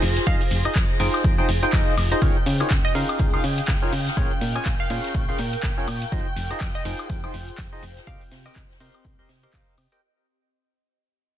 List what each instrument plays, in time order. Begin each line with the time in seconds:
Already playing: analog synth pad F4 C5, violin section G#4 A#6
0.02 fm bass F1, open hi-hat, tambourine, cabasa
0.16 snare, closed hi-hat, tambourine, cabasa
0.27 fm bass F2, synth stab D#4 F4 G#4 C5 D#5, synth pluck F5, kick, closed hi-hat, cabasa
0.41 closed hi-hat, open hi-hat, cabasa
0.51 fm bass F1, closed hi-hat, open hi-hat, tambourine, cabasa
0.65 synth stab D#4 F4 G#4 C5 D#5, synth pluck D#5, closed hi-hat, tambourine, cabasa, high woodblock
0.75 fm bass F2, kick, snare, clap, closed hi-hat, cabasa
0.99 fm bass F1, synth stab D#4 F4 G#4 C5 G5, closed hi-hat, open hi-hat, tambourine, cabasa
1.14 snare, closed hi-hat, tambourine, cabasa, high woodblock
1.24 fm bass F2, kick, closed hi-hat, tambourine, cabasa
1.38 synth stab D#4 F4 G#4 C5 G5
1.49 fm bass F1, closed hi-hat, open hi-hat, tambourine, cabasa
1.63 synth stab D#4 F4 G#4 C5 G5, closed hi-hat, tambourine, cabasa
1.73 fm bass F2, synth stab D#4 D#5, kick, snare, clap, closed hi-hat, tambourine, cabasa
1.88 cabasa
1.97 fm bass F1, closed hi-hat, open hi-hat, tambourine, cabasa, high woodblock
2.12 synth stab D#4 F4 G#4 C5 D#5, closed hi-hat, tambourine, cabasa
2.22 fm bass C#2, analog synth pad C#4, synth stab D#4 F4 G#4 A#4 C#5, violin section G5 G6, kick, closed hi-hat, tambourine, cabasa
2.37 analog synth pad G#4 D#5, cabasa
2.46 fm bass C#3, closed hi-hat, open hi-hat, tambourine, cabasa
2.60 synth stab D#4 F4 G#4 A#4 C#5, closed hi-hat, tambourine, cabasa, high woodblock
2.69 fm bass C#2, analog synth pad F5, kick, snare, clap, closed hi-hat, cabasa
2.85 synth pluck D#5
2.95 fm bass C#3, synth stab D#4 F4 G#4 A#4 F5, closed hi-hat, open hi-hat, tambourine, cabasa
3.09 closed hi-hat, tambourine, cabasa, high woodblock
3.19 fm bass C#2, kick, closed hi-hat, tambourine, cabasa
3.33 synth stab D#4 F4 G#4 A#4 F5, high woodblock
3.44 fm bass C#3, closed hi-hat, open hi-hat, tambourine, cabasa
3.58 closed hi-hat, tambourine, cabasa
3.68 fm bass C#2, kick, snare, clap, closed hi-hat, open hi-hat, tambourine, cabasa
3.82 synth stab D#4 F4 G#4 A#4 C#5, cabasa
3.93 fm bass C#3, open hi-hat, tambourine, cabasa
4.06 snare, closed hi-hat, tambourine, cabasa
4.17 fm bass A#1, synth stab C#4 F4 G#4 A#4 C#5, analog synth pad A#4, kick, closed hi-hat, tambourine, cabasa
4.31 closed hi-hat, cabasa
4.41 fm bass A#2, closed hi-hat, open hi-hat, tambourine, cabasa
4.55 synth stab C#4 F4 G#4 A#4 C#5, synth pluck G#5, closed hi-hat, tambourine, cabasa, high woodblock
4.64 fm bass A#1, analog synth pad C#6, kick, snare, clap, closed hi-hat, tambourine, cabasa
4.80 synth pluck F5
4.90 fm bass A#2, synth stab C#4 F4 G#4 A#4 F5, closed hi-hat, open hi-hat, tambourine, cabasa
5.04 snare, closed hi-hat, tambourine, cabasa
5.14 fm bass A#1, kick, closed hi-hat, tambourine, cabasa
5.29 synth stab C#4 F4 G#4 A#4 F5
5.38 fm bass A#2, closed hi-hat, open hi-hat, tambourine, cabasa
5.53 closed hi-hat, tambourine, cabasa
5.63 fm bass A#1, kick, snare, clap, closed hi-hat, tambourine, cabasa
5.77 synth stab C#4 F4 G#4 A#4 C#5, cabasa
5.88 fm bass A#2, closed hi-hat, open hi-hat, tambourine, cabasa, high woodblock
6.02 closed hi-hat, tambourine, cabasa
6.12 fm bass F2, synth stab D#4 F4 G#4 C5 D#5, analog synth pad F4, kick, closed hi-hat, tambourine, cabasa
6.27 cabasa
6.35 fm bass F1, analog synth pad G#4, closed hi-hat, open hi-hat, tambourine, cabasa
6.50 synth stab D#4 F4 G#4 C5 D#5, analog synth pad C5, closed hi-hat, tambourine, cabasa, high woodblock
6.60 fm bass F2, kick, snare, clap, closed hi-hat, cabasa
6.75 synth pluck D#5
6.85 fm bass F1, synth stab D#4 F4 G#4 C5 G5, closed hi-hat, open hi-hat, tambourine, cabasa
6.99 closed hi-hat, tambourine, cabasa, high woodblock
7.10 fm bass F2, kick, closed hi-hat, tambourine, cabasa
7.24 synth stab D#4 F4 G#4 C5 G5, high woodblock
7.34 fm bass F1, closed hi-hat, open hi-hat, tambourine, cabasa
7.48 closed hi-hat, tambourine, cabasa
7.58 fm bass F2, kick, snare, clap, closed hi-hat, open hi-hat, cabasa
7.73 synth stab D#4 F4 G#4 C5 D#5, cabasa
7.82 fm bass F1, open hi-hat, tambourine, cabasa
7.97 snare, closed hi-hat, tambourine, cabasa
8.07 fm bass C2, analog synth pad C4, synth stab G4 A#4 C5 D#5 G5, synth pluck F5, kick, closed hi-hat, tambourine, cabasa
8.21 closed hi-hat, open hi-hat, cabasa
8.30 fm bass C3, analog synth pad G4, snare, closed hi-hat, open hi-hat, tambourine, cabasa
8.46 synth stab G4 A#4 C5 D#5 G5, synth pluck D#5, snare, closed hi-hat, tambourine, cabasa, high woodblock
8.55 fm bass C2, kick, snare, clap, closed hi-hat, tambourine, cabasa
8.70 snare, closed hi-hat, cabasa
8.80 fm bass C3, synth stab G4 A#4 C5 D#5 C6, open hi-hat, tambourine, cabasa
8.94 analog synth pad D#5, closed hi-hat, tambourine, cabasa, high woodblock
9.05 fm bass C2, kick, closed hi-hat, tambourine, cabasa
9.19 synth stab G4 A#4 C5 D#5 C6, cabasa
9.29 fm bass C3, snare, closed hi-hat, open hi-hat, tambourine, cabasa
9.43 synth stab G4 A#4 C5 D#5 C6, closed hi-hat, tambourine, cabasa
9.53 fm bass C2, synth stab G4 C5 D#5, kick, snare, clap, closed hi-hat, tambourine, cabasa
9.68 cabasa
9.77 fm bass C3, closed hi-hat, open hi-hat, tambourine, cabasa, high woodblock
9.92 synth stab G4 A#4 C5 D#5 G5, closed hi-hat, tambourine, cabasa